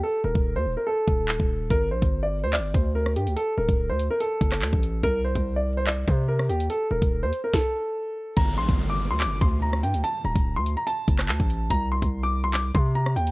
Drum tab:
CC |----------------|----------------|----------------|----------------|
HH |----------------|x--x----x-x---xx|x--x--x-x-x-x-x-|x--x----x-x---xx|
CP |------------x---|--------x-------|-----------xx---|--------x-------|
SD |----------------|-------------r--|-----------r----|-------------r--|
BD |---o------o--o--|o--o------o-----|---o------o--o--|o--o------o-----|

CC |----------------|x---------------|----------------|----------------|
HH |x--x--x---------|x--x----x-x---xx|x--x--x-x-x-x-x-|x--x----x-x---xx|
CP |----------------|--------x-------|-----------xx---|--------x-------|
SD |--------o-------|-------------r--|-----------r----|-------------r--|
BD |---o----o-------|o--o------o-----|---o------o--o--|o--o------o-----|